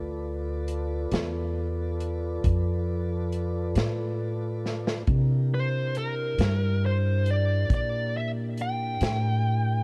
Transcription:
0.00 1.09 D2 medium
0.00 5.03 F4 medium
0.00 5.03 A4 medium
0.00 5.03 B4 medium
0.00 5.03 D5 medium
0.68 closed hi-hat medium
1.12 2.40 E2 medium
1.12 snare medium
1.12 closed hi-hat medium
2.00 closed hi-hat soft
2.44 3.72 F2 medium
2.44 kick medium
2.44 closed hi-hat medium
3.32 closed hi-hat soft
3.75 5.03 A2 medium
3.75 snare medium
3.75 closed hi-hat medium
4.66 snare soft
4.87 snare medium
5.07 6.35 C3 medium
5.07 9.83 D4 medium
5.07 9.83 E4 medium
5.07 9.83 G4 medium
5.07 9.83 A#4 medium
5.07 kick medium
5.07 closed hi-hat medium
5.54 5.98 C5 medium
5.95 6.86 A#4 medium
5.95 closed hi-hat medium
6.38 7.66 G2 medium
6.38 snare medium
6.38 closed hi-hat medium
6.86 7.30 C5 medium
7.26 closed hi-hat medium
7.30 7.73 D5 medium
7.70 8.97 A#2 medium
7.70 kick medium
7.70 closed hi-hat medium
7.74 8.17 D5 medium
8.17 8.29 E5 medium
8.58 closed hi-hat soft
8.62 9.83 G5 medium
9.01 9.83 A2 medium
9.01 snare medium
9.01 closed hi-hat medium

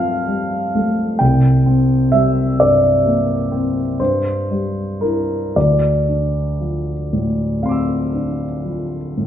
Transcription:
0.00 1.15 G2 soft
0.00 0.55 F3 soft
0.00 0.28 G3 soft
0.00 0.75 A3 soft
0.00 1.22 C4 soft
0.00 1.19 F5 medium
0.00 1.22 A5 medium
0.28 1.02 G3 soft
0.75 1.21 A3 soft
1.19 3.96 C2 soft
1.19 2.12 G5 soft
1.66 2.40 C4 soft
2.12 2.86 G3 soft
2.12 2.59 E5 medium
2.60 3.33 G2 soft
2.60 4.00 D5 soft
3.05 3.80 A#3 soft
3.52 4.00 C4 soft
4.00 5.52 G2 soft
4.00 5.02 C5 soft
4.51 5.34 G3 soft
5.01 5.51 D4 soft
5.01 5.52 E4 soft
5.01 5.55 A#4 soft
5.56 9.27 D2 soft
5.56 9.27 D5 soft
6.09 6.91 D4 soft
6.61 7.42 F3 soft
7.13 7.94 A2 soft
7.62 8.45 C4 soft
7.62 9.27 F5 soft
7.62 9.27 C6 soft
7.69 9.27 D6 soft
7.69 9.27 E6 soft
8.14 8.97 D4 soft
8.65 9.27 F3 soft
9.17 9.27 A2 soft

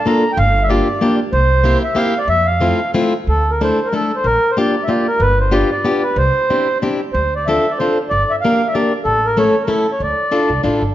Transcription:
0.06 0.23 A#3 medium
0.06 0.24 D4 medium
0.06 0.24 F4 medium
0.06 0.24 A4 medium
0.06 0.32 A#5 medium
0.32 0.38 G5 medium
0.37 0.79 G1 loud
0.37 0.63 F5 loud
0.63 0.70 E5 medium
0.69 0.87 A#3 medium
0.69 0.87 D4 medium
0.69 0.87 F4 medium
0.69 0.87 G4 medium
0.69 1.15 D5 medium
1.01 1.19 A#3 medium
1.01 1.19 D4 medium
1.01 1.19 F4 medium
1.01 1.19 G4 medium
1.33 1.74 C2 medium
1.33 1.78 C5 loud
1.64 1.81 A#3 medium
1.64 1.82 C4 medium
1.64 1.82 E4 medium
1.64 1.82 G4 medium
1.84 1.98 E5 medium
1.95 2.13 A#3 medium
1.95 2.13 C4 medium
1.95 2.14 E4 medium
1.95 2.14 G4 medium
1.95 2.19 F5 medium
2.19 2.28 D5 medium
2.28 2.71 F2 medium
2.28 2.47 E5 loud
2.46 2.91 F5 medium
2.60 2.79 A3 medium
2.60 2.79 C4 medium
2.60 2.79 E4 medium
2.60 2.79 F4 medium
2.94 3.13 A3 medium
2.94 3.13 C4 medium
2.94 3.13 E4 medium
2.94 3.13 F4 medium
3.27 3.70 D2 medium
3.27 3.51 A4 medium
3.51 3.62 A#4 medium
3.61 3.79 A3 medium
3.61 3.79 D4 medium
3.61 3.79 E4 medium
3.61 3.79 A4 medium
3.61 3.88 C5 medium
3.86 3.94 A#4 medium
3.93 4.11 A3 medium
3.93 4.11 D4 medium
3.93 4.11 E4 medium
3.93 4.11 A4 medium
3.93 4.16 A4 medium
4.16 4.26 C5 medium
4.24 4.36 A#1 medium
4.24 4.51 A#4 loud
4.51 4.58 C5 medium
4.57 4.74 A#3 medium
4.57 4.75 D4 medium
4.57 4.75 F4 medium
4.57 4.75 G4 medium
4.57 4.84 D5 medium
4.84 4.90 E5 medium
4.88 5.06 A#3 medium
4.88 5.06 D4 medium
4.88 5.06 F4 medium
4.88 5.06 G4 medium
4.88 5.07 D5 medium
5.07 5.22 A#4 medium
5.20 5.61 G1 medium
5.20 5.39 B4 loud
5.41 5.54 C5 medium
5.51 5.69 B3 medium
5.51 5.70 D4 medium
5.51 5.70 F4 medium
5.51 5.70 G4 medium
5.51 5.70 D5 medium
5.71 6.04 D5 medium
5.84 6.02 B3 medium
5.84 6.02 D4 medium
5.84 6.02 F4 medium
5.84 6.02 G4 medium
6.02 6.17 B4 medium
6.16 6.28 C2 medium
6.16 6.78 C5 loud
6.50 6.67 C4 medium
6.50 6.67 D4 medium
6.50 6.67 E4 medium
6.50 6.67 G4 medium
6.82 7.00 C4 medium
6.82 7.00 D4 medium
6.82 7.00 E4 medium
6.82 7.00 G4 medium
7.13 7.56 D2 medium
7.13 7.34 C5 medium
7.36 7.47 D5 medium
7.46 7.65 C4 medium
7.46 7.65 D4 medium
7.46 7.65 F4 medium
7.46 7.65 A4 medium
7.46 7.72 E5 medium
7.71 7.79 D5 medium
7.78 7.97 C4 medium
7.78 7.97 D4 medium
7.78 7.97 F4 medium
7.78 7.98 A4 medium
7.78 7.98 C5 medium
8.09 8.23 G1 medium
8.09 8.32 D5 loud
8.31 8.36 E5 loud
8.41 8.61 A#3 medium
8.41 8.61 D4 medium
8.41 8.61 G4 medium
8.41 8.67 F5 loud
8.45 8.61 A#4 medium
8.68 8.75 E5 medium
8.74 8.92 A#3 medium
8.74 8.92 D4 medium
8.74 8.92 G4 medium
8.74 8.92 A#4 medium
8.74 8.93 D5 medium
9.04 9.46 A1 medium
9.04 9.26 A4 loud
9.26 9.37 A#4 loud
9.37 9.55 A3 medium
9.37 9.54 C#4 medium
9.37 9.54 E4 medium
9.37 9.55 A4 medium
9.37 9.63 C#5 medium
9.62 9.69 A#4 medium
9.67 9.86 A3 medium
9.67 9.86 C#4 medium
9.67 9.86 E4 medium
9.67 9.86 A4 medium
9.67 9.91 A4 medium
9.92 10.02 C#5 medium
10.00 10.12 D2 medium
10.00 10.62 D5 medium
10.31 10.50 D4 medium
10.31 10.49 E4 medium
10.31 10.50 F4 medium
10.31 10.50 A4 medium
10.50 10.63 C2 medium
10.64 10.81 A1 medium
10.64 10.82 D4 medium
10.64 10.82 E4 medium
10.64 10.82 F4 medium
10.64 10.82 A4 medium
10.82 10.95 G1 medium

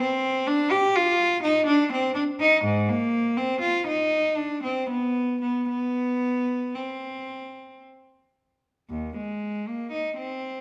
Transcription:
0.00 0.47 C4 loud
0.47 0.72 D4 loud
0.71 0.95 G4 loud
0.96 1.43 F4 loud
1.43 1.67 D#4 loud
1.67 1.91 D4 loud
1.92 2.16 C4 loud
2.14 2.22 D4 loud
2.40 2.64 D#4 loud
2.65 2.89 G#2 loud
2.89 3.38 A#3 loud
3.37 3.62 C4 medium
3.61 3.86 F4 medium
3.87 4.37 D#4 loud
4.38 4.64 D4 medium
4.63 4.89 C4 medium
4.90 5.41 B3 medium
5.42 5.67 B3 medium
5.69 6.72 B3 medium
6.75 7.80 C4 medium
8.90 9.16 D#2 medium
9.17 9.66 G#3 medium
9.68 9.92 A#3 medium
9.92 10.16 D#4 medium
10.18 10.61 C4 medium

